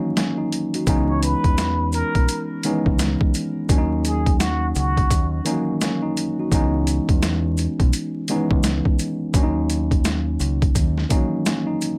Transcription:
Already playing: tine electric piano D#3 E3 F#3 A#3 C#4 D#4
0.17 tine electric piano A#3 C#4, snare, closed hi-hat
0.37 tine electric piano D#4
0.52 closed hi-hat
0.74 tine electric piano D#4 F#4, closed hi-hat
0.87 fingered electric bass C#2, tine electric piano E3 G#3 B3 C#4 D#4, kick, closed hi-hat, maracas
1.09 muted trumpet C#5
1.23 muted trumpet B4, closed hi-hat, maracas
1.44 fingered electric bass E2, kick, closed hi-hat
1.58 snare, closed hi-hat, maracas
1.92 muted trumpet A#4, closed hi-hat, maracas
2.15 fingered electric bass B1, kick, closed hi-hat
2.28 closed hi-hat, maracas
2.63 tine electric piano D#3 G#3 B3 C#4 D#4, closed hi-hat, maracas
2.70 tine electric piano E3
2.86 fingered electric bass C#2, kick
2.99 snare, closed hi-hat, maracas
3.21 kick
3.34 closed hi-hat, maracas
3.69 fingered electric bass D#2, tine electric piano D#3 F#3 A#3 C#4 D4, kick, closed hi-hat, maracas
3.78 tine electric piano D#4
4.05 muted trumpet G#4, closed hi-hat, maracas
4.26 kick, closed hi-hat
4.39 muted trumpet F#4, snare, closed hi-hat, maracas
4.75 fingered electric bass C#2, muted trumpet F#4, closed hi-hat, maracas
4.97 kick, closed hi-hat
5.10 fingered electric bass D#2, kick, closed hi-hat, maracas
5.45 tine electric piano D#3 E3 A#3 C#4 D#4, closed hi-hat, maracas
5.52 tine electric piano F#3
5.81 tine electric piano A#3 C#4, snare, closed hi-hat, maracas
6.02 tine electric piano D#4
6.17 closed hi-hat, maracas
6.39 tine electric piano D#4 F#4
6.52 fingered electric bass C#2, tine electric piano E3 G#3 B3 C#4 D#4, kick, closed hi-hat, maracas
6.87 closed hi-hat, maracas
7.09 fingered electric bass E2, kick, closed hi-hat
7.23 snare, closed hi-hat, maracas
7.57 closed hi-hat, maracas
7.80 fingered electric bass B1, kick, closed hi-hat
7.93 closed hi-hat, maracas
8.28 tine electric piano D#3 G#3 B3 C#4 D#4, closed hi-hat, maracas
8.35 tine electric piano E3
8.51 fingered electric bass C#2, kick
8.63 snare, closed hi-hat, maracas
8.85 kick
8.99 closed hi-hat, maracas
9.34 fingered electric bass D#2, tine electric piano D#3 F#3 A#3 C#4 D4, kick, closed hi-hat, maracas
9.43 tine electric piano D#4
9.70 closed hi-hat, maracas
9.91 kick, closed hi-hat
10.04 snare, closed hi-hat, maracas
10.40 fingered electric bass C#2, closed hi-hat, maracas
10.62 kick, closed hi-hat
10.75 fingered electric bass D#2, kick, closed hi-hat, maracas
10.98 snare
11.09 tine electric piano D#3 E3 A#3 C#4 D#4, kick, closed hi-hat, maracas
11.16 tine electric piano F#3
11.46 tine electric piano A#3 C#4, snare, closed hi-hat, maracas
11.67 tine electric piano D#4
11.81 closed hi-hat, maracas

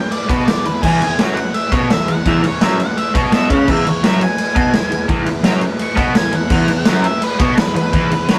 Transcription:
Already playing: lead electric guitar G5
0.11 transistor combo organ G#4 B4 E5, lead electric guitar D5, ride
0.29 overdriven electric guitar B2 B3, lead electric guitar B4, kick, ride
0.45 overdriven electric guitar E2, transistor combo organ G#4 B4 E5, lead electric guitar D5, snare, ride
0.65 overdriven electric guitar E2, lead electric guitar B4, ride
0.82 overdriven electric guitar E2 E3, lead electric guitar G#4, transistor combo organ G#4 B4 E5, kick, crash
1.02 overdriven electric guitar E2, ride
1.17 overdriven electric guitar F#2 F#3, transistor combo organ G#4 B4 E5, snare, ride
1.35 lead electric guitar F#5, ride
1.54 transistor combo organ G#4 B4 E5, lead electric guitar E5, ride
1.72 overdriven electric guitar B2 B3, lead electric guitar C#5, kick, ride
1.88 overdriven electric guitar E2, transistor combo organ G#4 B4 E5, snare, ride
1.93 lead electric guitar E5
2.08 overdriven electric guitar E2, lead electric guitar F#5, ride
2.26 overdriven electric guitar E2 E3, transistor combo organ G#4 B4 E5, lead electric guitar E5, kick, ride
2.44 overdriven electric guitar E2, lead electric guitar C#5, ride
2.59 overdriven electric guitar F#2 F#3, transistor combo organ G#4 B4 E5, lead electric guitar E5, snare, ride
2.80 lead electric guitar F#5, ride
2.95 transistor combo organ G#4 B4 E5, lead electric guitar E5, ride
3.15 overdriven electric guitar B2 B3, lead electric guitar C#5, kick, ride
3.31 overdriven electric guitar B2 B3, transistor combo organ G#4 B4 E5, lead electric guitar E5, snare, ride
3.49 overdriven electric guitar C#3 C#4, lead electric guitar F#5, kick, ride
3.68 overdriven electric guitar E2 E3, transistor combo organ G#4 B4 E5, lead electric guitar E5, kick, crash
3.86 overdriven electric guitar E2, lead electric guitar C#5, ride
4.03 overdriven electric guitar F#2 F#3, transistor combo organ G#4 B4 E5, lead electric guitar E5, snare, ride
4.21 lead electric guitar G#5, ride
4.38 transistor combo organ G#4 B4 E5, ride
4.55 overdriven electric guitar B2 B3, kick, ride
4.73 overdriven electric guitar E2, transistor combo organ G#4 B4 E5, snare, ride
4.91 overdriven electric guitar E2, ride
5.08 overdriven electric guitar E2 E3, transistor combo organ G#4 B4 E5, kick, ride
5.26 overdriven electric guitar E2, ride
5.43 overdriven electric guitar F#2 F#3, transistor combo organ G#4 B4 E5, snare, ride
5.61 ride
5.79 transistor combo organ G#4 B4 E5, lead electric guitar C#6, ride
5.96 overdriven electric guitar B2 B3, lead electric guitar B5, kick, ride
6.14 overdriven electric guitar E2, transistor combo organ G#4 B4 E5, lead electric guitar G#5, snare, ride
6.33 overdriven electric guitar E2, lead electric guitar F#5, ride
6.50 overdriven electric guitar E2 E3, transistor combo organ G#4 B4 E5, kick, crash
6.68 overdriven electric guitar E2, ride
6.86 overdriven electric guitar F#2 F#3, transistor combo organ G#4 B4 E5, snare, ride
7.04 lead electric guitar E5, ride
7.22 transistor combo organ G#4 B4 E5, lead electric guitar B4, ride
7.40 overdriven electric guitar B2 B3, lead electric guitar C#5, kick, ride
7.58 overdriven electric guitar E2, transistor combo organ G#4 B4, lead electric guitar B4, snare, ride
7.62 transistor combo organ E5
7.75 overdriven electric guitar E2, lead electric guitar B4, ride
7.93 overdriven electric guitar E2 E3, transistor combo organ G#4 B4 E5, kick, ride
8.11 overdriven electric guitar E2, ride
8.28 overdriven electric guitar F#2 F#3, transistor combo organ G#4 B4 E5, snare, ride

